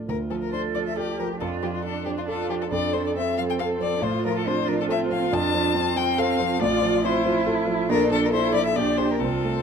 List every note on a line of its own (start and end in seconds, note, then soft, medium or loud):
0.00 0.08 D2 soft
0.00 0.12 A2 soft
0.00 0.12 F3 soft
0.00 0.12 D4 soft
0.00 0.12 A4 soft
0.08 1.37 D2 medium
0.08 1.37 F4 medium
0.08 0.17 A#4 medium
0.30 0.66 F3 soft
0.30 0.35 A4 medium
0.42 0.52 A#4 medium
0.52 0.88 D4 soft
0.52 0.98 A4 medium
0.52 0.61 C5 medium
0.75 1.11 F3 soft
0.75 0.79 D5 medium
0.87 0.97 E5 medium
0.96 1.40 G4 medium
0.96 1.33 A4 soft
0.96 1.19 D5 medium
1.19 1.41 F3 soft
1.19 1.27 A#4 medium
1.41 2.69 F2 medium
1.41 2.70 D4 medium
1.41 1.83 F4 medium
1.41 1.49 A4 medium
1.62 1.98 F3 soft
1.62 1.67 G4 medium
1.75 1.84 F4 medium
1.84 2.27 D4 medium
1.84 2.20 D4 soft
1.84 2.05 A4 medium
2.05 2.42 F3 soft
2.05 2.10 G4 medium
2.18 2.22 F4 medium
2.28 2.70 F4 medium
2.28 2.49 A4 medium
2.28 2.63 A4 medium
2.49 2.72 F3 soft
2.49 2.55 G4 medium
2.62 2.66 A4 medium
2.71 3.98 F2 medium
2.71 3.17 D4 medium
2.71 4.04 A4 medium
2.71 2.95 D5 medium
2.93 3.29 F3 soft
2.93 3.05 C5 medium
3.06 3.11 D5 medium
3.15 4.04 C4 medium
3.15 3.51 C4 soft
3.15 3.37 E5 medium
3.38 3.73 F3 soft
3.38 3.42 F5 medium
3.50 3.54 G5 medium
3.59 3.94 A4 medium
3.59 3.67 F5 medium
3.80 4.02 F3 medium
3.80 4.05 D5 medium
4.02 5.28 A2 medium
4.02 4.48 F4 medium
4.02 6.61 F4 medium
4.02 4.25 C5 medium
4.25 4.60 F3 medium
4.25 4.36 A#4 medium
4.38 4.49 A4 medium
4.46 4.81 C4 medium
4.46 4.91 D4 medium
4.46 4.70 C5 loud
4.68 5.02 F3 medium
4.68 4.79 A#4 medium
4.80 4.84 A4 medium
4.88 5.32 C4 medium
4.88 5.23 A4 medium
4.88 4.98 E5 loud
5.10 5.32 F3 medium
5.10 5.35 F5 medium
5.32 6.57 F2 medium
5.32 5.76 D4 medium
5.32 5.98 A5 loud
5.54 5.88 F3 medium
5.75 6.62 C4 medium
5.75 6.10 C4 medium
5.96 6.31 F3 medium
5.96 6.20 G5 loud
6.18 6.52 A4 medium
6.18 6.61 F5 loud
6.40 6.61 F3 medium
6.60 7.86 A1 medium
6.60 7.03 F4 medium
6.60 7.88 F4 medium
6.60 7.06 D5 loud
6.82 7.17 F3 medium
7.03 7.39 C4 medium
7.03 7.91 E4 medium
7.03 7.47 C5 medium
7.26 7.60 F3 medium
7.46 7.81 A4 medium
7.67 7.90 F3 medium
7.89 8.74 A#1 medium
7.89 8.32 D4 medium
7.89 8.79 A4 medium
7.89 8.10 A#4 loud
8.11 8.46 F3 medium
8.11 8.22 A4 loud
8.25 8.29 A#4 medium
8.32 8.68 D4 medium
8.32 8.76 E4 medium
8.32 8.54 C5 loud
8.53 8.76 F3 medium
8.53 8.65 D5 loud
8.66 8.78 E5 loud
8.76 9.20 A#1 medium
8.76 9.21 D4 medium
8.76 9.21 G4 medium
8.76 8.99 D5 loud
8.97 9.19 D4 soft
8.97 9.19 G4 medium
8.97 9.12 C5 medium
9.11 9.21 A#4 medium
9.20 9.62 C2 medium
9.20 9.62 C4 medium
9.20 9.62 F4 medium
9.20 9.62 A4 medium
9.44 9.62 A3 medium